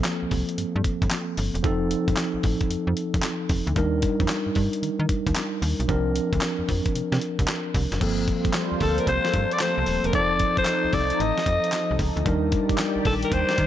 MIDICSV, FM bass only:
0, 0, Header, 1, 2, 480
1, 0, Start_track
1, 0, Key_signature, -2, "minor"
1, 0, Tempo, 530973
1, 1483, Time_signature, 4, 2, 24, 8
1, 12356, End_track
2, 0, Start_track
2, 0, Title_t, "FM bass"
2, 0, Program_c, 0, 39
2, 205, Note_on_c, 0, 36, 49
2, 237, Note_off_c, 0, 36, 0
2, 285, Note_on_c, 0, 36, 77
2, 397, Note_off_c, 0, 36, 0
2, 525, Note_on_c, 0, 43, 46
2, 587, Note_off_c, 0, 43, 0
2, 684, Note_on_c, 0, 43, 102
2, 741, Note_off_c, 0, 43, 0
2, 920, Note_on_c, 0, 31, 99
2, 979, Note_off_c, 0, 31, 0
2, 1245, Note_on_c, 0, 31, 97
2, 1357, Note_off_c, 0, 31, 0
2, 1395, Note_on_c, 0, 28, 87
2, 1456, Note_off_c, 0, 28, 0
2, 1483, Note_on_c, 0, 29, 101
2, 1767, Note_off_c, 0, 29, 0
2, 1879, Note_on_c, 0, 31, 87
2, 1939, Note_off_c, 0, 31, 0
2, 2116, Note_on_c, 0, 33, 51
2, 2150, Note_off_c, 0, 33, 0
2, 2205, Note_on_c, 0, 33, 88
2, 2317, Note_off_c, 0, 33, 0
2, 2437, Note_on_c, 0, 41, 50
2, 2502, Note_off_c, 0, 41, 0
2, 2596, Note_on_c, 0, 41, 92
2, 2656, Note_off_c, 0, 41, 0
2, 2840, Note_on_c, 0, 29, 91
2, 2899, Note_off_c, 0, 29, 0
2, 3161, Note_on_c, 0, 29, 89
2, 3274, Note_off_c, 0, 29, 0
2, 3316, Note_on_c, 0, 38, 97
2, 3377, Note_off_c, 0, 38, 0
2, 3401, Note_on_c, 0, 39, 109
2, 3686, Note_off_c, 0, 39, 0
2, 3797, Note_on_c, 0, 41, 86
2, 3857, Note_off_c, 0, 41, 0
2, 4036, Note_on_c, 0, 43, 48
2, 4070, Note_off_c, 0, 43, 0
2, 4124, Note_on_c, 0, 43, 85
2, 4236, Note_off_c, 0, 43, 0
2, 4363, Note_on_c, 0, 51, 50
2, 4426, Note_off_c, 0, 51, 0
2, 4515, Note_on_c, 0, 51, 96
2, 4576, Note_off_c, 0, 51, 0
2, 4762, Note_on_c, 0, 39, 86
2, 4820, Note_off_c, 0, 39, 0
2, 5080, Note_on_c, 0, 39, 94
2, 5194, Note_off_c, 0, 39, 0
2, 5240, Note_on_c, 0, 35, 83
2, 5299, Note_off_c, 0, 35, 0
2, 5321, Note_on_c, 0, 36, 101
2, 5606, Note_off_c, 0, 36, 0
2, 5720, Note_on_c, 0, 38, 93
2, 5779, Note_off_c, 0, 38, 0
2, 5957, Note_on_c, 0, 41, 50
2, 5991, Note_off_c, 0, 41, 0
2, 6048, Note_on_c, 0, 41, 83
2, 6159, Note_off_c, 0, 41, 0
2, 6285, Note_on_c, 0, 48, 46
2, 6347, Note_off_c, 0, 48, 0
2, 6437, Note_on_c, 0, 48, 92
2, 6498, Note_off_c, 0, 48, 0
2, 6682, Note_on_c, 0, 36, 91
2, 6741, Note_off_c, 0, 36, 0
2, 7003, Note_on_c, 0, 36, 101
2, 7115, Note_off_c, 0, 36, 0
2, 7159, Note_on_c, 0, 30, 87
2, 7219, Note_off_c, 0, 30, 0
2, 7241, Note_on_c, 0, 31, 103
2, 7526, Note_off_c, 0, 31, 0
2, 7880, Note_on_c, 0, 38, 51
2, 7913, Note_off_c, 0, 38, 0
2, 7963, Note_on_c, 0, 38, 93
2, 8135, Note_off_c, 0, 38, 0
2, 8200, Note_on_c, 0, 36, 99
2, 8313, Note_off_c, 0, 36, 0
2, 8442, Note_on_c, 0, 43, 101
2, 8555, Note_off_c, 0, 43, 0
2, 8839, Note_on_c, 0, 36, 95
2, 8899, Note_off_c, 0, 36, 0
2, 8921, Note_on_c, 0, 27, 84
2, 9034, Note_off_c, 0, 27, 0
2, 9078, Note_on_c, 0, 28, 86
2, 9138, Note_off_c, 0, 28, 0
2, 9161, Note_on_c, 0, 29, 93
2, 9446, Note_off_c, 0, 29, 0
2, 9802, Note_on_c, 0, 36, 49
2, 9835, Note_off_c, 0, 36, 0
2, 9883, Note_on_c, 0, 36, 88
2, 10055, Note_off_c, 0, 36, 0
2, 10125, Note_on_c, 0, 33, 104
2, 10237, Note_off_c, 0, 33, 0
2, 10363, Note_on_c, 0, 41, 99
2, 10475, Note_off_c, 0, 41, 0
2, 10765, Note_on_c, 0, 36, 90
2, 10822, Note_off_c, 0, 36, 0
2, 10840, Note_on_c, 0, 37, 95
2, 10954, Note_off_c, 0, 37, 0
2, 10996, Note_on_c, 0, 38, 91
2, 11056, Note_off_c, 0, 38, 0
2, 11082, Note_on_c, 0, 39, 107
2, 11366, Note_off_c, 0, 39, 0
2, 11715, Note_on_c, 0, 34, 50
2, 11749, Note_off_c, 0, 34, 0
2, 11801, Note_on_c, 0, 34, 82
2, 11973, Note_off_c, 0, 34, 0
2, 12038, Note_on_c, 0, 39, 97
2, 12153, Note_off_c, 0, 39, 0
2, 12280, Note_on_c, 0, 51, 103
2, 12356, Note_off_c, 0, 51, 0
2, 12356, End_track
0, 0, End_of_file